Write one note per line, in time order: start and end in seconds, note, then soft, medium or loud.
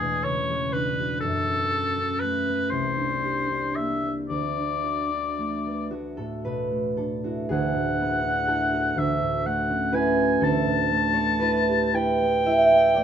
0.00 1.26 E2 medium
0.00 1.26 B2 soft
0.00 0.48 G#3 soft
0.00 0.73 D4 soft
0.00 0.98 F#4 soft
0.00 0.25 G#4 medium
0.00 1.26 B4 soft
0.24 0.66 C#3 soft
0.24 0.75 C#5 medium
0.50 1.27 G#3 soft
0.73 1.27 D4 soft
0.73 1.20 B4 medium
1.00 2.76 F#4 soft
1.21 2.76 F#2 soft
1.21 2.21 A4 medium
1.49 1.96 C#4 soft
1.72 2.76 A4 soft
1.97 2.76 C#4 soft
2.20 2.76 A3 soft
2.20 2.72 B4 medium
2.47 2.90 B3 soft
2.71 4.34 C2 soft
2.71 3.77 C5 medium
2.97 3.48 D4 soft
3.24 4.34 G4 soft
3.49 4.56 D4 soft
3.76 4.35 A#3 soft
3.76 4.13 E5 medium
4.02 4.49 C4 soft
4.29 7.49 D2 soft
4.29 5.89 D5 medium
4.58 5.09 D4 soft
4.83 5.89 F#4 soft
5.11 6.97 D4 soft
5.38 5.91 A3 soft
5.66 6.11 B3 soft
5.91 6.70 A3 soft
5.91 7.23 F#4 medium
6.17 7.55 A2 soft
6.17 6.64 A4 medium
6.45 6.92 B2 soft
6.45 9.00 B4 medium
6.71 9.45 A3 soft
6.97 8.22 D4 soft
6.97 7.43 A4 medium
7.24 8.47 E4 soft
7.24 7.68 F#4 medium
7.49 8.96 D2 medium
7.49 9.15 G#4 medium
7.49 9.00 F#5 medium
7.74 9.00 A2 soft
8.00 9.01 B3 soft
8.24 9.00 D4 soft
8.48 9.93 E4 soft
8.48 10.39 A4 medium
8.73 10.16 F#4 soft
8.97 10.40 D2 medium
8.97 9.47 E5 medium
9.22 10.46 A2 soft
9.46 10.90 A3 soft
9.46 9.96 F#5 medium
9.70 10.46 C#4 soft
9.92 11.40 E4 medium
9.92 10.75 B4 medium
9.92 10.42 G#5 medium
10.17 10.45 F#4 soft
10.40 13.04 D2 medium
10.40 13.04 A4 medium
10.40 11.96 A5 medium
10.66 13.04 A2 soft
10.91 12.95 A3 soft
11.13 12.21 B3 soft
11.13 11.59 C#5 medium
11.40 11.93 E4 soft
11.40 11.92 B4 medium
11.68 13.04 G4 soft
11.93 12.46 E4 soft
11.93 13.04 B4 medium
11.93 13.04 G5 medium
12.22 12.70 B3 soft
12.46 13.04 E4 soft
12.46 13.04 E5 medium
12.71 13.04 B3 soft
12.94 13.04 A3 medium
12.94 13.04 D5 medium